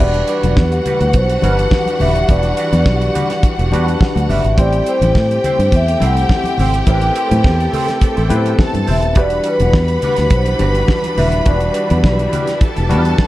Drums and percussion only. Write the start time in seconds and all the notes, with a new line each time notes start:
0.14 closed hi-hat
0.28 closed hi-hat
0.43 closed hi-hat, high conga
0.57 kick, snare
0.72 closed hi-hat
0.86 closed hi-hat, low conga
1.01 closed hi-hat
1.13 kick, closed hi-hat, muted conga
1.29 closed hi-hat
1.42 closed hi-hat, high conga
1.59 closed hi-hat
1.71 kick, snare, muted conga, high conga
1.86 closed hi-hat, muted conga, high conga
2.00 open hi-hat, low conga
2.15 closed hi-hat
2.29 kick, closed hi-hat
2.43 closed hi-hat, muted conga
2.57 closed hi-hat
2.73 closed hi-hat, high conga
2.86 kick, snare, muted conga
3.01 closed hi-hat, muted conga
3.15 closed hi-hat, low conga
3.30 snare, closed hi-hat
3.43 kick, closed hi-hat, muted conga
3.59 closed hi-hat
3.72 closed hi-hat, high conga
3.88 closed hi-hat
4.01 kick, snare, high conga
4.16 closed hi-hat, muted conga, high conga
4.30 open hi-hat, low conga
4.45 closed hi-hat
4.58 kick, closed hi-hat
4.73 closed hi-hat
4.86 closed hi-hat
5.02 closed hi-hat, high conga
5.15 kick, snare, muted conga
5.31 closed hi-hat, muted conga
5.44 closed hi-hat, low conga
5.60 closed hi-hat
5.72 kick, closed hi-hat
5.88 closed hi-hat
6.00 closed hi-hat, high conga
6.17 closed hi-hat
6.29 kick, snare, high conga
6.44 closed hi-hat, muted conga, high conga
6.58 open hi-hat, low conga
6.74 closed hi-hat
6.87 kick, closed hi-hat
7.01 closed hi-hat, muted conga
7.16 closed hi-hat
7.31 closed hi-hat, high conga
7.44 kick, snare, muted conga
7.60 closed hi-hat
7.73 open hi-hat, low conga
7.88 snare, closed hi-hat
8.01 kick, closed hi-hat
8.17 closed hi-hat, muted conga
8.30 closed hi-hat, high conga
8.46 closed hi-hat
8.59 kick, snare, muted conga, high conga
8.74 closed hi-hat, muted conga, high conga
8.87 open hi-hat, low conga
9.02 closed hi-hat
9.15 kick, closed hi-hat
9.30 closed hi-hat
9.44 closed hi-hat
9.60 closed hi-hat, high conga
9.73 kick, snare, muted conga
9.88 closed hi-hat, muted conga
10.02 closed hi-hat, low conga
10.16 snare, closed hi-hat
10.30 kick, closed hi-hat
10.46 closed hi-hat, muted conga
10.59 closed hi-hat, high conga
10.75 closed hi-hat
10.88 kick, snare, muted conga, high conga
11.04 closed hi-hat, high conga
11.17 open hi-hat, low conga
11.32 closed hi-hat
11.46 kick, closed hi-hat, muted conga
11.60 closed hi-hat, muted conga
11.74 closed hi-hat
11.90 closed hi-hat, high conga
12.04 kick, snare, muted conga
12.19 closed hi-hat, muted conga
12.33 closed hi-hat, low conga
12.47 snare, closed hi-hat
12.61 kick, closed hi-hat, muted conga
12.76 closed hi-hat, muted conga
12.89 closed hi-hat, high conga
13.05 closed hi-hat
13.18 kick, snare, muted conga, high conga